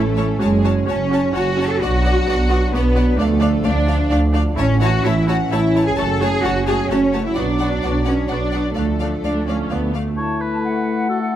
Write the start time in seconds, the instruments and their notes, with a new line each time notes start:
Already playing: double bass section A1, trombone section E3 C#4, cello section A3, violin section A4
0.16 viola section C#4 E4, violin section C#5 A5
0.39 double bass section F#1, cello section G#3, viola section C#4 F#4, violin section G#4 C#5 A5
0.43 trombone section F#3
0.63 viola section C#4 F#4, violin section C#5 A5
0.86 double bass section F#1, viola section C#4 F#4, cello section C#4, violin section C#5 A5
1.10 viola section C#4 F#4, violin section C#5 A5
1.32 double bass section F#1, viola section C#4 F#4, cello section F#4, violin section C#5 F#5 A5
1.56 viola section C#4 F#4
1.60 violin section C#5 A5
1.69 cello section A4, violin section A5
1.79 double bass section B1, viola section B3 F#4, trombone section D4, cello section F#4, violin section D5 F#5
2.02 viola section B3 F#4, violin section D5 F#5
2.26 double bass section B1, viola section B3 F#4, violin section D5 F#5
2.49 viola section B3 F#4, violin section D5 F#5
2.72 double bass section B1, viola section B3 F#4, cello section B3, violin section B4 D5 F#5
2.95 viola section B3 F#4, violin section D5 F#5
3.17 double bass section D2, trombone section F3, viola section A3 D4, cello section A3, violin section A4 D5 F5
3.39 viola section A3 D4, violin section D5 F5
3.64 double bass section D2, viola section A3 D4, cello section D4, violin section D5 F5
3.87 viola section A3 D4, violin section D5 F5
4.10 double bass section D2, viola section A3 D4, violin section D5 F5
4.33 viola section A3 D4, violin section D5 F5
4.56 double bass section A1, trombone section E3 C#4, viola section A3 E4, cello section C#4, violin section C#5 A5
4.80 viola section A3 E4, cello section F#4, violin section C#5 F#5 A5
5.03 double bass section A1, viola section A3 E4, cello section E4, violin section C#5 E5 A5
5.26 viola section A3 E4, cello section F#4, violin section C#5 F#5 A5
5.50 double bass section A1, viola section A3 E4, cello section E4, violin section C#5 E5 A5
5.74 viola section A3 E4, violin section C#5 A5
5.84 cello section G#4, violin section G#5
5.95 double bass section F#1, trombone section F#3, viola section A3 F#4, cello section A4, violin section C#5 A5
6.20 viola section A3 F#4, cello section G#4, violin section C#5 G#5 A5
6.42 double bass section F#1, viola section A3 F#4, cello section F#4, violin section C#5 F#5 A5
6.66 viola section A3 F#4, cello section G#4, violin section C#5 G#5 A5
6.89 double bass section F#1, viola section A3 F#4, cello section C#4, violin section C#5 A5
7.13 viola section A3 F#4, violin section C#5 A5
7.25 cello section E4, violin section E5
7.35 double bass section B1, viola section B3 F#4, cello section D4, trombone section D4, violin section D5 F#5
7.59 viola section B3 F#4, violin section D5 F#5
7.82 double bass section B1, viola section B3 F#4, violin section D5 F#5
8.05 viola section B3 F#4, cello section C#4, violin section C#5 D5 F#5
8.28 double bass section B1, viola section B3 F#4, cello section D4, violin section D5 F#5
8.52 viola section B3 F#4, violin section D5 F#5
8.75 double bass section D2, trombone section F3, cello section A3, viola section A3 D4, violin section A4 D5 F5
9.00 viola section A3 D4, violin section D5 F5
9.23 double bass section D2, viola section D4, violin section D5 F5
9.47 viola section C#4, violin section D5 F5
9.71 double bass section D2, viola section B3, violin section D5 F5
9.94 viola section A3, violin section D5 F5
10.16 french horn section A3, clarinet E4, oboe C#5, flute section A5
10.41 oboe B4
10.64 flute section F#5
11.09 clarinet F#4, oboe A4
11.31 clarinet E4